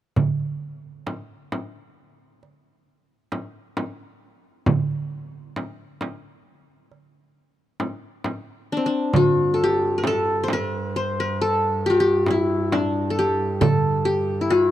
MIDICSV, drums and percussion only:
0, 0, Header, 1, 3, 480
1, 0, Start_track
1, 0, Tempo, 895522
1, 94, Time_signature, 10, 3, 24, 8
1, 7885, End_track
2, 0, Start_track
2, 0, Title_t, "Darbuka"
2, 93, Note_on_c, 9, 64, 61
2, 147, Note_off_c, 9, 64, 0
2, 212, Note_on_c, 9, 62, 19
2, 266, Note_off_c, 9, 62, 0
2, 571, Note_on_c, 9, 63, 47
2, 624, Note_off_c, 9, 63, 0
2, 815, Note_on_c, 9, 63, 51
2, 869, Note_off_c, 9, 63, 0
2, 1302, Note_on_c, 9, 62, 19
2, 1355, Note_off_c, 9, 62, 0
2, 1778, Note_on_c, 9, 63, 47
2, 1832, Note_off_c, 9, 63, 0
2, 2022, Note_on_c, 9, 63, 54
2, 2076, Note_off_c, 9, 63, 0
2, 2506, Note_on_c, 9, 64, 68
2, 2560, Note_off_c, 9, 64, 0
2, 2631, Note_on_c, 9, 62, 20
2, 2684, Note_off_c, 9, 62, 0
2, 2987, Note_on_c, 9, 63, 51
2, 3041, Note_off_c, 9, 63, 0
2, 3227, Note_on_c, 9, 63, 56
2, 3281, Note_off_c, 9, 63, 0
2, 3706, Note_on_c, 9, 62, 19
2, 3760, Note_off_c, 9, 62, 0
2, 4182, Note_on_c, 9, 63, 53
2, 4236, Note_off_c, 9, 63, 0
2, 4426, Note_on_c, 9, 63, 53
2, 4480, Note_off_c, 9, 63, 0
2, 4904, Note_on_c, 9, 64, 82
2, 4958, Note_off_c, 9, 64, 0
2, 5026, Note_on_c, 9, 62, 21
2, 5079, Note_off_c, 9, 62, 0
2, 5385, Note_on_c, 9, 63, 59
2, 5439, Note_off_c, 9, 63, 0
2, 5628, Note_on_c, 9, 63, 64
2, 5682, Note_off_c, 9, 63, 0
2, 6583, Note_on_c, 9, 63, 60
2, 6637, Note_off_c, 9, 63, 0
2, 6823, Note_on_c, 9, 63, 61
2, 6877, Note_off_c, 9, 63, 0
2, 7062, Note_on_c, 9, 62, 20
2, 7116, Note_off_c, 9, 62, 0
2, 7297, Note_on_c, 9, 64, 88
2, 7351, Note_off_c, 9, 64, 0
2, 7420, Note_on_c, 9, 62, 20
2, 7473, Note_off_c, 9, 62, 0
2, 7776, Note_on_c, 9, 63, 56
2, 7830, Note_off_c, 9, 63, 0
2, 7885, End_track
3, 0, Start_track
3, 0, Title_t, "Frame drum"
3, 88, Note_on_c, 9, 64, 56
3, 141, Note_off_c, 9, 64, 0
3, 573, Note_on_c, 9, 64, 51
3, 626, Note_off_c, 9, 64, 0
3, 816, Note_on_c, 9, 64, 52
3, 869, Note_off_c, 9, 64, 0
3, 1780, Note_on_c, 9, 64, 53
3, 1834, Note_off_c, 9, 64, 0
3, 2020, Note_on_c, 9, 64, 55
3, 2073, Note_off_c, 9, 64, 0
3, 2499, Note_on_c, 9, 64, 69
3, 2553, Note_off_c, 9, 64, 0
3, 2982, Note_on_c, 9, 64, 51
3, 3036, Note_off_c, 9, 64, 0
3, 3221, Note_on_c, 9, 64, 47
3, 3274, Note_off_c, 9, 64, 0
3, 4180, Note_on_c, 9, 64, 56
3, 4233, Note_off_c, 9, 64, 0
3, 4419, Note_on_c, 9, 64, 58
3, 4472, Note_off_c, 9, 64, 0
3, 4896, Note_on_c, 9, 64, 73
3, 4950, Note_off_c, 9, 64, 0
3, 5379, Note_on_c, 9, 64, 64
3, 5433, Note_off_c, 9, 64, 0
3, 5619, Note_on_c, 9, 64, 62
3, 5673, Note_off_c, 9, 64, 0
3, 6574, Note_on_c, 9, 64, 65
3, 6627, Note_off_c, 9, 64, 0
3, 6820, Note_on_c, 9, 64, 64
3, 6874, Note_off_c, 9, 64, 0
3, 7299, Note_on_c, 9, 64, 73
3, 7352, Note_off_c, 9, 64, 0
3, 7885, End_track
0, 0, End_of_file